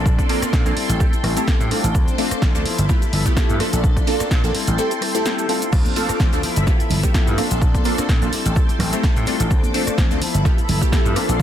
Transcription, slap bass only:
0, 0, Header, 1, 3, 480
1, 0, Start_track
1, 0, Tempo, 472441
1, 58, Time_signature, 4, 2, 24, 8
1, 11606, End_track
2, 0, Start_track
2, 0, Title_t, "Slap bass"
2, 0, Program_c, 0, 36
2, 56, Note_on_c, 0, 34, 99
2, 167, Note_off_c, 0, 34, 0
2, 538, Note_on_c, 0, 46, 105
2, 648, Note_off_c, 0, 46, 0
2, 663, Note_on_c, 0, 34, 95
2, 757, Note_off_c, 0, 34, 0
2, 904, Note_on_c, 0, 33, 101
2, 998, Note_off_c, 0, 33, 0
2, 1252, Note_on_c, 0, 33, 100
2, 1365, Note_off_c, 0, 33, 0
2, 1624, Note_on_c, 0, 45, 95
2, 1718, Note_off_c, 0, 45, 0
2, 1866, Note_on_c, 0, 33, 99
2, 1959, Note_off_c, 0, 33, 0
2, 1978, Note_on_c, 0, 38, 100
2, 2088, Note_off_c, 0, 38, 0
2, 2459, Note_on_c, 0, 33, 105
2, 2568, Note_off_c, 0, 33, 0
2, 2587, Note_on_c, 0, 38, 95
2, 2679, Note_off_c, 0, 38, 0
2, 2828, Note_on_c, 0, 31, 104
2, 2920, Note_off_c, 0, 31, 0
2, 3177, Note_on_c, 0, 31, 101
2, 3287, Note_off_c, 0, 31, 0
2, 3550, Note_on_c, 0, 43, 97
2, 3641, Note_off_c, 0, 43, 0
2, 3789, Note_on_c, 0, 34, 99
2, 3880, Note_off_c, 0, 34, 0
2, 3898, Note_on_c, 0, 34, 100
2, 4008, Note_off_c, 0, 34, 0
2, 4378, Note_on_c, 0, 46, 106
2, 4488, Note_off_c, 0, 46, 0
2, 4507, Note_on_c, 0, 34, 92
2, 4599, Note_off_c, 0, 34, 0
2, 4748, Note_on_c, 0, 33, 102
2, 4840, Note_off_c, 0, 33, 0
2, 5817, Note_on_c, 0, 38, 99
2, 5927, Note_off_c, 0, 38, 0
2, 6298, Note_on_c, 0, 33, 101
2, 6408, Note_off_c, 0, 33, 0
2, 6429, Note_on_c, 0, 38, 93
2, 6520, Note_off_c, 0, 38, 0
2, 6670, Note_on_c, 0, 31, 100
2, 6761, Note_off_c, 0, 31, 0
2, 7020, Note_on_c, 0, 31, 97
2, 7129, Note_off_c, 0, 31, 0
2, 7390, Note_on_c, 0, 43, 95
2, 7481, Note_off_c, 0, 43, 0
2, 7630, Note_on_c, 0, 34, 101
2, 7721, Note_off_c, 0, 34, 0
2, 7738, Note_on_c, 0, 34, 99
2, 7847, Note_off_c, 0, 34, 0
2, 8218, Note_on_c, 0, 46, 102
2, 8328, Note_off_c, 0, 46, 0
2, 8350, Note_on_c, 0, 34, 97
2, 8441, Note_off_c, 0, 34, 0
2, 8589, Note_on_c, 0, 33, 102
2, 8680, Note_off_c, 0, 33, 0
2, 8936, Note_on_c, 0, 33, 98
2, 9047, Note_off_c, 0, 33, 0
2, 9309, Note_on_c, 0, 45, 93
2, 9400, Note_off_c, 0, 45, 0
2, 9548, Note_on_c, 0, 33, 97
2, 9640, Note_off_c, 0, 33, 0
2, 10138, Note_on_c, 0, 33, 102
2, 10248, Note_off_c, 0, 33, 0
2, 10269, Note_on_c, 0, 38, 96
2, 10360, Note_off_c, 0, 38, 0
2, 10508, Note_on_c, 0, 31, 102
2, 10600, Note_off_c, 0, 31, 0
2, 10859, Note_on_c, 0, 31, 103
2, 10968, Note_off_c, 0, 31, 0
2, 11229, Note_on_c, 0, 43, 96
2, 11320, Note_off_c, 0, 43, 0
2, 11468, Note_on_c, 0, 34, 100
2, 11560, Note_off_c, 0, 34, 0
2, 11606, End_track
3, 0, Start_track
3, 0, Title_t, "Muted slap bass strokes"
3, 426, Note_on_c, 9, 29, 44
3, 528, Note_off_c, 9, 29, 0
3, 774, Note_on_c, 9, 29, 43
3, 875, Note_off_c, 9, 29, 0
3, 1146, Note_on_c, 9, 29, 44
3, 1247, Note_off_c, 9, 29, 0
3, 1736, Note_on_c, 9, 29, 43
3, 1838, Note_off_c, 9, 29, 0
3, 2348, Note_on_c, 9, 29, 46
3, 2450, Note_off_c, 9, 29, 0
3, 2697, Note_on_c, 9, 29, 43
3, 2799, Note_off_c, 9, 29, 0
3, 3068, Note_on_c, 9, 29, 44
3, 3170, Note_off_c, 9, 29, 0
3, 3657, Note_on_c, 9, 29, 44
3, 3759, Note_off_c, 9, 29, 0
3, 4269, Note_on_c, 9, 29, 45
3, 4371, Note_off_c, 9, 29, 0
3, 4619, Note_on_c, 9, 29, 43
3, 4720, Note_off_c, 9, 29, 0
3, 6190, Note_on_c, 9, 29, 46
3, 6291, Note_off_c, 9, 29, 0
3, 6538, Note_on_c, 9, 29, 41
3, 6640, Note_off_c, 9, 29, 0
3, 6909, Note_on_c, 9, 29, 44
3, 7011, Note_off_c, 9, 29, 0
3, 7499, Note_on_c, 9, 29, 44
3, 7601, Note_off_c, 9, 29, 0
3, 8110, Note_on_c, 9, 29, 45
3, 8212, Note_off_c, 9, 29, 0
3, 8459, Note_on_c, 9, 29, 43
3, 8561, Note_off_c, 9, 29, 0
3, 8829, Note_on_c, 9, 29, 44
3, 8931, Note_off_c, 9, 29, 0
3, 9418, Note_on_c, 9, 29, 42
3, 9520, Note_off_c, 9, 29, 0
3, 10028, Note_on_c, 9, 29, 47
3, 10130, Note_off_c, 9, 29, 0
3, 10377, Note_on_c, 9, 29, 42
3, 10479, Note_off_c, 9, 29, 0
3, 10749, Note_on_c, 9, 29, 44
3, 10850, Note_off_c, 9, 29, 0
3, 11338, Note_on_c, 9, 29, 43
3, 11439, Note_off_c, 9, 29, 0
3, 11606, End_track
0, 0, End_of_file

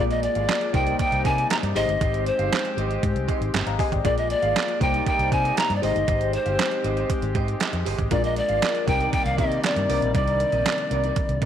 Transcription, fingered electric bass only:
0, 0, Header, 1, 2, 480
1, 0, Start_track
1, 0, Key_signature, -3, "minor"
1, 0, Tempo, 508475
1, 1899, Time_signature, 4, 2, 24, 8
1, 10813, End_track
2, 0, Start_track
2, 0, Title_t, "Fingered electric bass"
2, 0, Program_c, 0, 33
2, 0, Note_on_c, 0, 34, 104
2, 243, Note_off_c, 0, 34, 0
2, 338, Note_on_c, 0, 32, 100
2, 426, Note_off_c, 0, 32, 0
2, 698, Note_on_c, 0, 36, 93
2, 874, Note_off_c, 0, 36, 0
2, 1059, Note_on_c, 0, 36, 94
2, 1147, Note_off_c, 0, 36, 0
2, 1180, Note_on_c, 0, 48, 100
2, 1356, Note_off_c, 0, 48, 0
2, 1538, Note_on_c, 0, 43, 98
2, 1626, Note_off_c, 0, 43, 0
2, 1658, Note_on_c, 0, 32, 105
2, 1746, Note_off_c, 0, 32, 0
2, 1777, Note_on_c, 0, 31, 93
2, 1866, Note_off_c, 0, 31, 0
2, 1898, Note_on_c, 0, 32, 109
2, 2163, Note_off_c, 0, 32, 0
2, 2256, Note_on_c, 0, 31, 85
2, 2345, Note_off_c, 0, 31, 0
2, 2617, Note_on_c, 0, 32, 92
2, 2794, Note_off_c, 0, 32, 0
2, 2861, Note_on_c, 0, 44, 102
2, 2948, Note_off_c, 0, 44, 0
2, 2978, Note_on_c, 0, 36, 84
2, 3067, Note_off_c, 0, 36, 0
2, 3219, Note_on_c, 0, 32, 85
2, 3307, Note_off_c, 0, 32, 0
2, 3340, Note_on_c, 0, 31, 97
2, 3428, Note_off_c, 0, 31, 0
2, 3459, Note_on_c, 0, 32, 81
2, 3547, Note_off_c, 0, 32, 0
2, 3702, Note_on_c, 0, 32, 88
2, 3789, Note_off_c, 0, 32, 0
2, 3821, Note_on_c, 0, 34, 101
2, 4084, Note_off_c, 0, 34, 0
2, 4178, Note_on_c, 0, 32, 90
2, 4266, Note_off_c, 0, 32, 0
2, 4540, Note_on_c, 0, 36, 95
2, 4716, Note_off_c, 0, 36, 0
2, 4898, Note_on_c, 0, 36, 97
2, 4987, Note_off_c, 0, 36, 0
2, 5021, Note_on_c, 0, 48, 101
2, 5196, Note_off_c, 0, 48, 0
2, 5379, Note_on_c, 0, 43, 96
2, 5467, Note_off_c, 0, 43, 0
2, 5499, Note_on_c, 0, 32, 107
2, 5587, Note_off_c, 0, 32, 0
2, 5621, Note_on_c, 0, 31, 101
2, 5708, Note_off_c, 0, 31, 0
2, 5739, Note_on_c, 0, 32, 106
2, 6003, Note_off_c, 0, 32, 0
2, 6100, Note_on_c, 0, 31, 93
2, 6188, Note_off_c, 0, 31, 0
2, 6459, Note_on_c, 0, 32, 89
2, 6635, Note_off_c, 0, 32, 0
2, 6820, Note_on_c, 0, 32, 98
2, 6908, Note_off_c, 0, 32, 0
2, 6937, Note_on_c, 0, 44, 95
2, 7114, Note_off_c, 0, 44, 0
2, 7297, Note_on_c, 0, 41, 85
2, 7386, Note_off_c, 0, 41, 0
2, 7419, Note_on_c, 0, 31, 97
2, 7507, Note_off_c, 0, 31, 0
2, 7538, Note_on_c, 0, 32, 88
2, 7627, Note_off_c, 0, 32, 0
2, 7657, Note_on_c, 0, 34, 101
2, 7922, Note_off_c, 0, 34, 0
2, 8019, Note_on_c, 0, 32, 91
2, 8107, Note_off_c, 0, 32, 0
2, 8379, Note_on_c, 0, 36, 96
2, 8555, Note_off_c, 0, 36, 0
2, 8737, Note_on_c, 0, 36, 101
2, 8858, Note_on_c, 0, 48, 99
2, 8872, Note_off_c, 0, 36, 0
2, 9035, Note_off_c, 0, 48, 0
2, 9216, Note_on_c, 0, 43, 81
2, 9305, Note_off_c, 0, 43, 0
2, 9336, Note_on_c, 0, 36, 101
2, 9425, Note_off_c, 0, 36, 0
2, 9458, Note_on_c, 0, 34, 100
2, 9546, Note_off_c, 0, 34, 0
2, 9578, Note_on_c, 0, 36, 114
2, 9843, Note_off_c, 0, 36, 0
2, 9936, Note_on_c, 0, 34, 101
2, 10025, Note_off_c, 0, 34, 0
2, 10298, Note_on_c, 0, 36, 91
2, 10474, Note_off_c, 0, 36, 0
2, 10657, Note_on_c, 0, 36, 95
2, 10746, Note_off_c, 0, 36, 0
2, 10779, Note_on_c, 0, 48, 94
2, 10813, Note_off_c, 0, 48, 0
2, 10813, End_track
0, 0, End_of_file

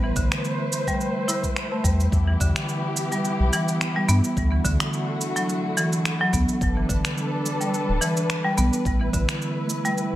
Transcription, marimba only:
0, 0, Header, 1, 2, 480
1, 0, Start_track
1, 0, Tempo, 560748
1, 1819, Time_signature, 4, 2, 24, 8
1, 8693, End_track
2, 0, Start_track
2, 0, Title_t, "Marimba"
2, 0, Program_c, 0, 12
2, 34, Note_on_c, 0, 52, 69
2, 94, Note_off_c, 0, 52, 0
2, 140, Note_on_c, 0, 50, 72
2, 609, Note_off_c, 0, 50, 0
2, 748, Note_on_c, 0, 55, 71
2, 853, Note_off_c, 0, 55, 0
2, 1096, Note_on_c, 0, 64, 74
2, 1222, Note_off_c, 0, 64, 0
2, 1469, Note_on_c, 0, 57, 70
2, 1568, Note_off_c, 0, 57, 0
2, 1575, Note_on_c, 0, 55, 79
2, 1695, Note_off_c, 0, 55, 0
2, 1947, Note_on_c, 0, 52, 73
2, 2011, Note_off_c, 0, 52, 0
2, 2060, Note_on_c, 0, 50, 68
2, 2529, Note_off_c, 0, 50, 0
2, 2672, Note_on_c, 0, 55, 73
2, 2775, Note_off_c, 0, 55, 0
2, 3019, Note_on_c, 0, 52, 95
2, 3377, Note_off_c, 0, 52, 0
2, 3388, Note_on_c, 0, 55, 95
2, 3493, Note_off_c, 0, 55, 0
2, 3497, Note_on_c, 0, 59, 104
2, 3738, Note_off_c, 0, 59, 0
2, 3866, Note_on_c, 0, 52, 68
2, 3930, Note_off_c, 0, 52, 0
2, 3977, Note_on_c, 0, 50, 79
2, 4447, Note_off_c, 0, 50, 0
2, 4589, Note_on_c, 0, 54, 72
2, 4693, Note_off_c, 0, 54, 0
2, 4938, Note_on_c, 0, 52, 100
2, 5296, Note_off_c, 0, 52, 0
2, 5313, Note_on_c, 0, 54, 100
2, 5415, Note_off_c, 0, 54, 0
2, 5420, Note_on_c, 0, 59, 99
2, 5659, Note_off_c, 0, 59, 0
2, 5795, Note_on_c, 0, 52, 73
2, 5855, Note_off_c, 0, 52, 0
2, 5898, Note_on_c, 0, 50, 72
2, 6368, Note_off_c, 0, 50, 0
2, 6511, Note_on_c, 0, 55, 74
2, 6614, Note_off_c, 0, 55, 0
2, 6859, Note_on_c, 0, 52, 104
2, 7217, Note_off_c, 0, 52, 0
2, 7232, Note_on_c, 0, 55, 97
2, 7334, Note_off_c, 0, 55, 0
2, 7341, Note_on_c, 0, 59, 100
2, 7580, Note_off_c, 0, 59, 0
2, 7712, Note_on_c, 0, 52, 73
2, 7773, Note_off_c, 0, 52, 0
2, 7818, Note_on_c, 0, 50, 73
2, 8288, Note_off_c, 0, 50, 0
2, 8431, Note_on_c, 0, 55, 72
2, 8534, Note_off_c, 0, 55, 0
2, 8693, End_track
0, 0, End_of_file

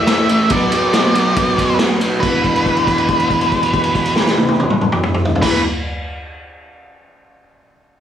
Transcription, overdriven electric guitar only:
0, 0, Header, 1, 2, 480
1, 0, Start_track
1, 0, Tempo, 432588
1, 554, Time_signature, 4, 2, 24, 8
1, 8878, End_track
2, 0, Start_track
2, 0, Title_t, "Overdriven electric guitar"
2, 0, Program_c, 0, 29
2, 86, Note_on_c, 0, 45, 89
2, 98, Note_on_c, 0, 52, 95
2, 109, Note_on_c, 0, 57, 86
2, 313, Note_off_c, 0, 45, 0
2, 324, Note_off_c, 0, 52, 0
2, 326, Note_on_c, 0, 45, 89
2, 327, Note_off_c, 0, 57, 0
2, 337, Note_on_c, 0, 52, 84
2, 341, Note_on_c, 0, 57, 92
2, 545, Note_off_c, 0, 45, 0
2, 550, Note_off_c, 0, 52, 0
2, 552, Note_off_c, 0, 57, 0
2, 570, Note_on_c, 0, 47, 94
2, 586, Note_on_c, 0, 54, 87
2, 594, Note_on_c, 0, 59, 92
2, 792, Note_off_c, 0, 47, 0
2, 800, Note_off_c, 0, 54, 0
2, 805, Note_on_c, 0, 47, 84
2, 813, Note_off_c, 0, 59, 0
2, 813, Note_on_c, 0, 54, 98
2, 826, Note_on_c, 0, 59, 94
2, 1024, Note_off_c, 0, 47, 0
2, 1032, Note_off_c, 0, 54, 0
2, 1038, Note_on_c, 0, 47, 85
2, 1043, Note_off_c, 0, 59, 0
2, 1046, Note_on_c, 0, 54, 94
2, 1056, Note_on_c, 0, 59, 94
2, 1254, Note_off_c, 0, 47, 0
2, 1267, Note_off_c, 0, 54, 0
2, 1267, Note_on_c, 0, 47, 86
2, 1276, Note_off_c, 0, 59, 0
2, 1281, Note_on_c, 0, 54, 97
2, 1289, Note_on_c, 0, 59, 99
2, 1503, Note_off_c, 0, 47, 0
2, 1516, Note_on_c, 0, 47, 85
2, 1517, Note_off_c, 0, 54, 0
2, 1524, Note_off_c, 0, 59, 0
2, 1530, Note_on_c, 0, 54, 77
2, 1538, Note_on_c, 0, 59, 86
2, 1733, Note_off_c, 0, 47, 0
2, 1747, Note_on_c, 0, 47, 75
2, 1749, Note_off_c, 0, 54, 0
2, 1762, Note_off_c, 0, 59, 0
2, 1762, Note_on_c, 0, 54, 93
2, 1775, Note_on_c, 0, 59, 92
2, 1971, Note_off_c, 0, 47, 0
2, 1985, Note_off_c, 0, 54, 0
2, 1985, Note_on_c, 0, 47, 87
2, 1991, Note_off_c, 0, 59, 0
2, 1998, Note_on_c, 0, 54, 99
2, 2004, Note_on_c, 0, 59, 102
2, 2213, Note_off_c, 0, 47, 0
2, 2225, Note_off_c, 0, 54, 0
2, 2227, Note_on_c, 0, 47, 80
2, 2237, Note_off_c, 0, 59, 0
2, 2238, Note_on_c, 0, 54, 94
2, 2250, Note_on_c, 0, 59, 86
2, 2453, Note_off_c, 0, 47, 0
2, 2458, Note_on_c, 0, 40, 69
2, 2459, Note_off_c, 0, 54, 0
2, 2465, Note_off_c, 0, 59, 0
2, 2486, Note_on_c, 0, 47, 81
2, 2505, Note_on_c, 0, 52, 95
2, 6007, Note_off_c, 0, 40, 0
2, 6012, Note_on_c, 0, 40, 84
2, 6028, Note_off_c, 0, 47, 0
2, 6032, Note_on_c, 0, 47, 92
2, 6045, Note_off_c, 0, 52, 0
2, 6050, Note_on_c, 0, 52, 100
2, 6234, Note_off_c, 0, 40, 0
2, 6244, Note_off_c, 0, 47, 0
2, 6253, Note_off_c, 0, 52, 0
2, 8878, End_track
0, 0, End_of_file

